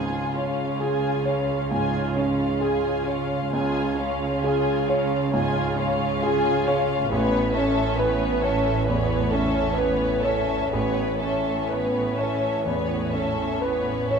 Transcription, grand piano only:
0.00 1.68 C#2 soft
0.36 1.08 C#4 soft
0.80 1.53 G#4 soft
1.25 1.98 C#5 soft
1.71 2.44 G#2 soft
2.17 2.89 C#4 soft
2.61 3.34 G#4 soft
3.07 3.80 C#5 soft
3.53 5.30 C#2 soft
3.98 4.71 C#4 soft
4.44 5.16 G#4 soft
4.89 5.61 C#5 soft
5.34 6.05 G#2 soft
5.79 6.49 C#4 soft
6.23 6.93 G#4 soft
6.68 7.11 C#5 soft
7.12 8.84 A1 soft
7.56 8.26 C#4 soft
7.99 8.70 B4 soft
8.44 9.15 C#5 soft
8.88 9.60 E2 soft
9.33 10.06 C#4 soft
9.78 10.54 B4 soft
10.24 11.02 C#5 soft
10.73 12.62 A1 soft
11.22 11.99 C#4 soft
11.70 12.46 B4 soft
12.19 12.95 C#5 soft
12.66 13.42 E2 soft
13.14 13.90 C#4 soft
13.62 14.19 B4 soft
14.11 14.19 C#5 soft

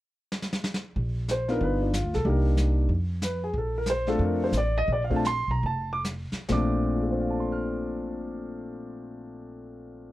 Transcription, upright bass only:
0.96 1.57 A#1 medium
1.60 2.00 G1 medium
2.04 2.13 D2 medium
2.15 2.24 B1 medium
2.25 2.86 C2 medium
2.89 3.50 F2 medium
3.53 4.16 A#1 medium
4.19 4.50 F2 medium
4.52 4.85 A1 medium
4.88 5.44 A#1 medium
5.48 5.62 B1 medium
5.63 6.28 F1 medium
6.32 muted upright bass stroke soft
6.49 10.12 A#1 medium

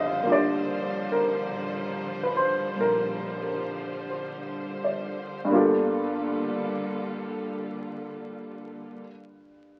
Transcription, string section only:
0.00 5.46 D3 medium
0.00 5.48 F3 medium
0.00 5.48 G3 medium
0.00 5.48 F4 medium
0.00 5.47 C5 medium
5.50 9.02 D3 medium
5.50 9.01 G3 medium
5.50 9.01 A#3 soft
5.50 9.02 F4 medium
5.50 9.03 A4 medium

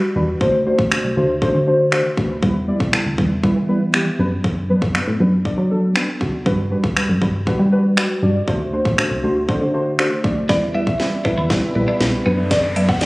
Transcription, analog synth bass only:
0.16 0.35 E2 medium
0.41 0.70 D2 loud
0.79 0.98 A1 medium
1.04 1.14 C2 medium
1.17 1.46 D2 medium
1.54 2.03 D3 loud
2.17 2.37 D2 medium
2.43 2.72 E2 loud
2.80 3.00 B1 medium
3.06 3.15 D2 medium
3.18 3.47 E2 medium
3.56 4.05 E3 loud
4.19 4.38 F#2 medium
4.44 4.73 F#2 loud
4.82 5.01 F#2 medium
5.07 5.17 A2 medium
5.20 5.49 F#2 medium
5.58 6.06 F#3 loud
6.21 6.40 D2 medium
6.46 6.75 G2 loud
6.84 7.03 D2 medium
7.09 7.19 F#2 medium
7.22 7.51 G2 medium
7.59 8.08 G3 loud
8.22 8.42 G2 medium
8.48 8.77 D2 loud
8.85 9.05 A1 medium
9.11 9.20 C2 medium
9.23 9.52 D2 medium
9.61 10.10 D3 loud
10.24 10.44 B1 medium
10.49 11.08 E2 loud
11.25 11.35 E3 loud
11.38 11.57 E2 medium
11.75 11.85 B1 medium
12.01 12.20 B1 loud
12.26 13.03 F#2 medium

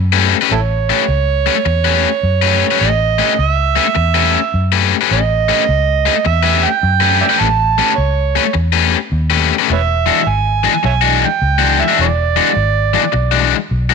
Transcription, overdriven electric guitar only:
0.13 0.35 A3 medium
0.13 0.35 C#4 medium
0.13 0.35 G4 loud
0.13 0.35 B4 loud
0.41 0.51 A3 medium
0.41 0.51 C#4 medium
0.41 0.51 G4 medium
0.41 0.51 B4 loud
0.90 1.02 A3 medium
0.90 1.02 C#4 medium
0.90 1.02 G4 medium
0.90 1.02 B4 medium
1.46 1.56 A3 medium
1.46 1.55 C#4 medium
1.46 1.55 G4 medium
1.46 1.55 B4 medium
1.56 muted overdriven electric guitar stroke medium
1.66 muted overdriven electric guitar stroke soft
1.85 2.08 A3 medium
1.85 2.08 C#4 medium
1.85 2.07 G4 medium
1.85 2.07 B4 medium
2.42 2.65 A3 medium
2.42 2.65 C#4 medium
2.42 2.65 G4 medium
2.42 2.64 B4 medium
2.71 2.87 A3 medium
2.71 2.87 C#4 medium
2.71 2.86 G4 medium
2.71 2.86 B4 medium
3.19 3.31 A3 medium
3.19 3.32 C#4 medium
3.19 3.32 G4 medium
3.19 3.32 B4 medium
3.76 3.86 A3 medium
3.76 3.86 C#4 medium
3.76 3.86 G4 medium
3.76 3.85 B4 medium
3.86 muted overdriven electric guitar stroke medium
3.95 muted overdriven electric guitar stroke soft
4.14 4.38 A3 medium
4.14 4.37 C#4 medium
4.14 4.37 G4 medium
4.14 4.37 B4 loud
4.72 4.95 A3 medium
4.72 4.95 C#4 medium
4.72 4.95 G4 medium
4.72 4.94 B4 loud
5.01 5.17 A3 medium
5.01 5.17 C#4 medium
5.01 5.16 G4 medium
5.01 5.16 B4 medium
5.49 5.61 A3 medium
5.49 5.61 C#4 medium
5.49 5.62 G4 medium
5.49 5.62 B4 medium
6.06 6.16 A3 medium
6.06 6.15 C#4 medium
6.06 6.14 G4 medium
6.06 6.14 B4 medium
6.15 muted overdriven electric guitar stroke soft
6.25 muted overdriven electric guitar stroke soft
6.43 6.67 A3 medium
6.43 6.66 C#4 medium
6.43 6.66 G4 medium
6.43 6.66 B4 medium
7.00 7.24 A3 medium
7.00 7.24 C#4 medium
7.00 7.24 G4 medium
7.00 7.23 B4 loud
7.29 7.46 A3 medium
7.29 7.46 C#4 medium
7.29 7.46 G4 medium
7.29 7.45 B4 medium
7.78 7.91 A3 medium
7.78 7.91 C#4 medium
7.78 7.91 G4 medium
7.78 7.91 B4 medium
8.36 8.45 A3 medium
8.36 8.44 C#4 medium
8.36 8.44 G4 medium
8.36 8.43 B4 medium
8.44 muted overdriven electric guitar stroke soft
8.54 muted overdriven electric guitar stroke soft
8.73 8.96 A3 medium
8.73 8.96 C#4 medium
8.73 8.96 G4 medium
8.73 8.95 B4 medium
9.30 9.53 A3 medium
9.30 9.53 C#4 medium
9.30 9.53 G4 loud
9.30 9.53 B4 medium
9.59 9.69 A3 medium
9.59 9.69 C#4 medium
9.59 9.69 G4 medium
9.59 9.69 B4 medium
10.06 10.19 E3 medium
10.06 10.20 G#3 medium
10.06 10.20 D4 medium
10.06 10.20 F#4 medium
10.64 10.74 E3 medium
10.64 10.73 G#3 medium
10.64 10.73 D4 medium
10.64 10.72 F#4 medium
10.73 muted overdriven electric guitar stroke soft
10.83 muted overdriven electric guitar stroke soft
11.01 11.25 E3 medium
11.01 11.25 G#3 medium
11.01 11.25 D4 medium
11.01 11.24 F#4 medium
11.58 11.82 E3 medium
11.58 11.82 G#3 medium
11.58 11.82 D4 medium
11.58 11.82 F#4 medium
11.88 12.05 E3 medium
11.88 12.04 G#3 medium
11.88 12.04 D4 medium
11.88 12.04 F#4 medium
12.36 12.49 E3 medium
12.36 12.49 G#3 medium
12.36 12.49 D4 medium
12.36 12.49 F#4 medium
12.94 13.03 E3 medium
12.94 13.03 G#3 medium
12.94 13.03 D4 medium
12.94 13.02 F#4 medium
13.03 muted overdriven electric guitar stroke medium
13.12 muted overdriven electric guitar stroke soft
13.31 13.55 E3 medium
13.31 13.55 G#3 medium
13.31 13.54 D4 medium
13.31 13.54 F#4 loud
13.90 13.94 E3 medium
13.90 13.94 G#3 medium
13.90 13.94 D4 medium
13.90 13.94 F#4 medium

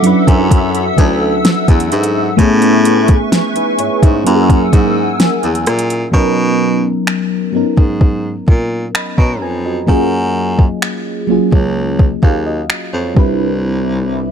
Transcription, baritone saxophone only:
0.04 0.14 F#2 soft
0.28 0.87 F#2 loud
0.98 1.37 D2 loud
1.68 1.88 E2 medium
1.92 2.31 G#2 medium
2.39 3.17 A2 loud
3.79 3.89 G#2 medium
4.03 4.22 G#2 medium
4.26 4.65 F#2 loud
4.73 5.12 G#2 loud
5.43 5.63 E2 medium
5.67 6.06 A#2 medium
6.13 6.92 B2 loud
7.54 7.64 G#2 soft
7.77 8.37 G#2 medium
8.48 8.87 A#2 medium
9.18 9.43 B2 medium
9.41 9.81 F2 medium
9.88 10.67 F#2 loud
11.29 11.38 C#2 soft
11.52 12.12 C#2 medium
12.23 12.62 D#2 medium
12.93 13.13 F2 medium
13.16 14.31 C2 loud

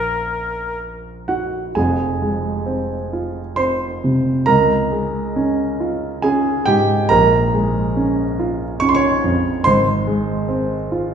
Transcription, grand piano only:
0.00 1.69 A#1 soft
0.00 1.70 A#3 soft
0.00 1.70 C#4 soft
0.00 1.71 F4 soft
1.28 1.72 F#4 medium
1.28 1.75 F#5 medium
1.75 4.43 F1 medium
1.75 4.43 F2 medium
1.75 3.54 G#4 medium
1.75 3.58 G#5 medium
2.22 2.94 G#3 medium
2.66 3.40 C4 medium
3.13 3.85 F4 medium
3.56 4.29 C4 medium
3.56 4.42 C5 medium
3.56 4.46 C6 medium
4.04 4.47 C3 medium
4.46 7.07 C#2 medium
4.46 6.20 A#4 medium
4.46 6.23 A#5 loud
4.92 5.63 G#3 medium
5.36 6.06 C#4 medium
5.80 6.50 F4 medium
6.22 6.94 C#4 medium
6.22 6.64 G#4 medium
6.22 6.67 G#5 medium
6.66 7.11 G#2 medium
6.66 7.08 G4 medium
6.66 7.10 G5 loud
7.09 9.61 A#1 medium
7.09 8.77 A#4 medium
7.09 8.80 A#5 loud
7.54 8.22 G#3 medium
7.96 8.64 C#4 medium
8.39 9.07 F4 medium
8.80 9.48 C#4 medium
8.80 8.88 C#6 loud
8.89 8.96 C6 medium
8.95 9.61 C#5 medium
8.95 9.64 C#6 loud
9.24 9.65 F2 medium
9.64 11.14 G#1 medium
9.64 11.14 C5 medium
9.64 11.14 C6 loud
10.07 10.74 G#3 medium
10.48 11.14 C4 medium
10.92 11.14 F4 medium

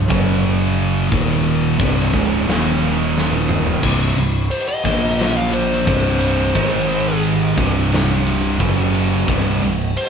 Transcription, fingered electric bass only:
0.10 1.08 F#1 loud
1.12 1.76 D#1 loud
1.80 2.11 C1 loud
2.14 2.45 C#1 loud
2.49 3.80 D#1 loud
3.83 4.15 C1 loud
4.17 4.49 C1 medium
4.85 5.83 A#1 loud
5.88 6.52 C1 loud
6.56 7.54 G#1 medium
7.58 8.56 C1 loud
8.60 9.24 F#1 loud
9.28 9.60 C1 loud
9.63 9.94 C1 medium

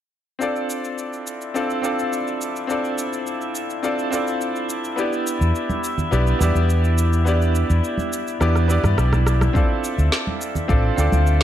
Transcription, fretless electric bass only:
5.41 5.50 E2 medium
6.12 6.32 B1 medium
6.41 6.51 E2 medium
6.55 7.62 E2 medium
7.70 7.79 E2 medium
8.41 8.77 E2 medium
8.84 8.93 G2 medium
8.97 9.48 B1 medium
9.98 10.08 D2 medium
10.69 10.89 A1 medium
10.98 11.08 D2 medium
11.12 11.43 D2 medium

